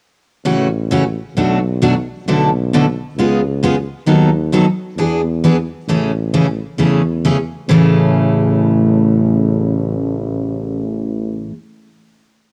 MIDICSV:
0, 0, Header, 1, 3, 480
1, 0, Start_track
1, 0, Key_signature, 3, "major"
1, 0, Tempo, 452148
1, 484, Time_signature, 4, 2, 24, 8
1, 13293, End_track
2, 0, Start_track
2, 0, Title_t, "Steel-string acoustic guitar"
2, 0, Program_c, 0, 25
2, 477, Note_on_c, 0, 52, 64
2, 480, Note_on_c, 0, 61, 72
2, 481, Note_on_c, 0, 49, 53
2, 483, Note_on_c, 0, 57, 67
2, 488, Note_on_c, 0, 66, 71
2, 708, Note_off_c, 0, 52, 0
2, 710, Note_off_c, 0, 49, 0
2, 710, Note_off_c, 0, 61, 0
2, 711, Note_off_c, 0, 57, 0
2, 714, Note_off_c, 0, 66, 0
2, 964, Note_on_c, 0, 52, 72
2, 965, Note_on_c, 0, 49, 66
2, 974, Note_on_c, 0, 57, 74
2, 976, Note_on_c, 0, 61, 76
2, 979, Note_on_c, 0, 66, 81
2, 1085, Note_off_c, 0, 49, 0
2, 1085, Note_off_c, 0, 52, 0
2, 1090, Note_off_c, 0, 57, 0
2, 1091, Note_off_c, 0, 61, 0
2, 1092, Note_off_c, 0, 66, 0
2, 1450, Note_on_c, 0, 47, 58
2, 1455, Note_on_c, 0, 54, 57
2, 1460, Note_on_c, 0, 57, 62
2, 1461, Note_on_c, 0, 62, 60
2, 1463, Note_on_c, 0, 66, 66
2, 1676, Note_off_c, 0, 47, 0
2, 1678, Note_off_c, 0, 54, 0
2, 1681, Note_off_c, 0, 57, 0
2, 1681, Note_off_c, 0, 62, 0
2, 1682, Note_off_c, 0, 66, 0
2, 1929, Note_on_c, 0, 47, 65
2, 1933, Note_on_c, 0, 54, 76
2, 1939, Note_on_c, 0, 57, 79
2, 1939, Note_on_c, 0, 62, 83
2, 1942, Note_on_c, 0, 66, 81
2, 2049, Note_off_c, 0, 47, 0
2, 2050, Note_off_c, 0, 54, 0
2, 2054, Note_off_c, 0, 57, 0
2, 2054, Note_off_c, 0, 62, 0
2, 2055, Note_off_c, 0, 66, 0
2, 2419, Note_on_c, 0, 47, 60
2, 2423, Note_on_c, 0, 50, 65
2, 2423, Note_on_c, 0, 57, 63
2, 2428, Note_on_c, 0, 62, 67
2, 2429, Note_on_c, 0, 64, 59
2, 2430, Note_on_c, 0, 69, 67
2, 2641, Note_off_c, 0, 47, 0
2, 2644, Note_off_c, 0, 50, 0
2, 2644, Note_off_c, 0, 57, 0
2, 2646, Note_off_c, 0, 62, 0
2, 2646, Note_off_c, 0, 64, 0
2, 2647, Note_off_c, 0, 69, 0
2, 2903, Note_on_c, 0, 47, 79
2, 2911, Note_on_c, 0, 50, 78
2, 2911, Note_on_c, 0, 62, 79
2, 2915, Note_on_c, 0, 57, 83
2, 2917, Note_on_c, 0, 69, 77
2, 2920, Note_on_c, 0, 64, 74
2, 3017, Note_off_c, 0, 47, 0
2, 3021, Note_off_c, 0, 50, 0
2, 3021, Note_off_c, 0, 62, 0
2, 3023, Note_off_c, 0, 57, 0
2, 3024, Note_off_c, 0, 69, 0
2, 3025, Note_off_c, 0, 64, 0
2, 3381, Note_on_c, 0, 56, 57
2, 3383, Note_on_c, 0, 49, 59
2, 3391, Note_on_c, 0, 65, 59
2, 3392, Note_on_c, 0, 59, 67
2, 3399, Note_on_c, 0, 68, 63
2, 3604, Note_off_c, 0, 56, 0
2, 3605, Note_off_c, 0, 49, 0
2, 3609, Note_off_c, 0, 59, 0
2, 3609, Note_off_c, 0, 65, 0
2, 3613, Note_off_c, 0, 68, 0
2, 3850, Note_on_c, 0, 49, 69
2, 3858, Note_on_c, 0, 59, 76
2, 3858, Note_on_c, 0, 65, 79
2, 3859, Note_on_c, 0, 56, 74
2, 3869, Note_on_c, 0, 68, 80
2, 3971, Note_off_c, 0, 49, 0
2, 3976, Note_off_c, 0, 56, 0
2, 3976, Note_off_c, 0, 59, 0
2, 3976, Note_off_c, 0, 65, 0
2, 3981, Note_off_c, 0, 68, 0
2, 4314, Note_on_c, 0, 51, 61
2, 4320, Note_on_c, 0, 54, 66
2, 4322, Note_on_c, 0, 59, 65
2, 4323, Note_on_c, 0, 63, 68
2, 4328, Note_on_c, 0, 69, 71
2, 4552, Note_off_c, 0, 51, 0
2, 4555, Note_off_c, 0, 54, 0
2, 4555, Note_off_c, 0, 59, 0
2, 4556, Note_off_c, 0, 63, 0
2, 4559, Note_off_c, 0, 69, 0
2, 4802, Note_on_c, 0, 51, 68
2, 4809, Note_on_c, 0, 54, 79
2, 4815, Note_on_c, 0, 59, 69
2, 4816, Note_on_c, 0, 63, 83
2, 4818, Note_on_c, 0, 69, 88
2, 4929, Note_off_c, 0, 51, 0
2, 4932, Note_off_c, 0, 54, 0
2, 4935, Note_off_c, 0, 59, 0
2, 4935, Note_off_c, 0, 63, 0
2, 4937, Note_off_c, 0, 69, 0
2, 5289, Note_on_c, 0, 52, 58
2, 5292, Note_on_c, 0, 59, 59
2, 5295, Note_on_c, 0, 62, 65
2, 5302, Note_on_c, 0, 68, 68
2, 5520, Note_off_c, 0, 52, 0
2, 5521, Note_off_c, 0, 59, 0
2, 5523, Note_off_c, 0, 62, 0
2, 5526, Note_off_c, 0, 68, 0
2, 5772, Note_on_c, 0, 52, 74
2, 5781, Note_on_c, 0, 59, 79
2, 5781, Note_on_c, 0, 62, 66
2, 5786, Note_on_c, 0, 68, 81
2, 5895, Note_off_c, 0, 52, 0
2, 5899, Note_off_c, 0, 59, 0
2, 5899, Note_off_c, 0, 62, 0
2, 5902, Note_off_c, 0, 68, 0
2, 6248, Note_on_c, 0, 49, 57
2, 6254, Note_on_c, 0, 52, 66
2, 6255, Note_on_c, 0, 57, 62
2, 6260, Note_on_c, 0, 68, 64
2, 6262, Note_on_c, 0, 61, 74
2, 6480, Note_off_c, 0, 49, 0
2, 6483, Note_off_c, 0, 52, 0
2, 6483, Note_off_c, 0, 57, 0
2, 6486, Note_off_c, 0, 68, 0
2, 6487, Note_off_c, 0, 61, 0
2, 6727, Note_on_c, 0, 49, 75
2, 6729, Note_on_c, 0, 52, 70
2, 6729, Note_on_c, 0, 57, 81
2, 6733, Note_on_c, 0, 68, 85
2, 6736, Note_on_c, 0, 61, 80
2, 6853, Note_off_c, 0, 49, 0
2, 6853, Note_off_c, 0, 52, 0
2, 6853, Note_off_c, 0, 57, 0
2, 6855, Note_off_c, 0, 68, 0
2, 6857, Note_off_c, 0, 61, 0
2, 7201, Note_on_c, 0, 49, 60
2, 7208, Note_on_c, 0, 57, 65
2, 7211, Note_on_c, 0, 52, 53
2, 7213, Note_on_c, 0, 61, 66
2, 7214, Note_on_c, 0, 68, 66
2, 7436, Note_off_c, 0, 49, 0
2, 7440, Note_off_c, 0, 57, 0
2, 7441, Note_off_c, 0, 52, 0
2, 7442, Note_off_c, 0, 61, 0
2, 7443, Note_off_c, 0, 68, 0
2, 7694, Note_on_c, 0, 49, 71
2, 7695, Note_on_c, 0, 52, 70
2, 7702, Note_on_c, 0, 68, 80
2, 7703, Note_on_c, 0, 57, 79
2, 7703, Note_on_c, 0, 61, 79
2, 7816, Note_off_c, 0, 49, 0
2, 7816, Note_off_c, 0, 52, 0
2, 7820, Note_off_c, 0, 57, 0
2, 7820, Note_off_c, 0, 61, 0
2, 7820, Note_off_c, 0, 68, 0
2, 8160, Note_on_c, 0, 45, 74
2, 8165, Note_on_c, 0, 49, 82
2, 8169, Note_on_c, 0, 52, 86
2, 8181, Note_on_c, 0, 57, 93
2, 8185, Note_on_c, 0, 61, 83
2, 8189, Note_on_c, 0, 68, 78
2, 12205, Note_off_c, 0, 45, 0
2, 12210, Note_off_c, 0, 49, 0
2, 12214, Note_off_c, 0, 52, 0
2, 12226, Note_off_c, 0, 57, 0
2, 12230, Note_off_c, 0, 61, 0
2, 12234, Note_off_c, 0, 68, 0
2, 13293, End_track
3, 0, Start_track
3, 0, Title_t, "Tuba"
3, 0, Program_c, 1, 58
3, 474, Note_on_c, 1, 33, 76
3, 1247, Note_off_c, 1, 33, 0
3, 1444, Note_on_c, 1, 35, 78
3, 2214, Note_off_c, 1, 35, 0
3, 2408, Note_on_c, 1, 35, 86
3, 3178, Note_off_c, 1, 35, 0
3, 3362, Note_on_c, 1, 37, 76
3, 4135, Note_off_c, 1, 37, 0
3, 4324, Note_on_c, 1, 39, 83
3, 4907, Note_off_c, 1, 39, 0
3, 5274, Note_on_c, 1, 40, 85
3, 6052, Note_off_c, 1, 40, 0
3, 6235, Note_on_c, 1, 33, 76
3, 7012, Note_off_c, 1, 33, 0
3, 7201, Note_on_c, 1, 40, 64
3, 7975, Note_off_c, 1, 40, 0
3, 8157, Note_on_c, 1, 33, 88
3, 12160, Note_off_c, 1, 33, 0
3, 13293, End_track
0, 0, End_of_file